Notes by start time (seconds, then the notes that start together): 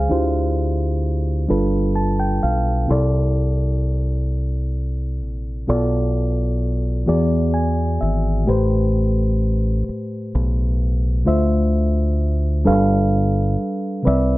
Already playing: G#4 C5 F5 G#5
0.09 D2 D3 D4 E4 F4 G4 C5
1.48 G1 G3 D4 F4 A4 B4
1.96 A5
2.20 G5
2.43 B1 F5
2.87 C2 C3 C4 E4 A4
2.92 D5
5.23 A#1
5.67 B1 B2 B3 F4 A4 D5
7.06 E2 E3 B3 F#4 G#4 D5
7.54 G#5
8.01 G#1 E5
8.45 A2 A3 G4 B4
8.49 A1 C5
9.89 muted fingered electric bass stroke
10.35 B1
11.25 D2 D3 A3 F4 C5 E5
12.65 G1 G3 D4 A4 B4 F5
14.03 C3 C4 B4 D5
14.07 C2 E5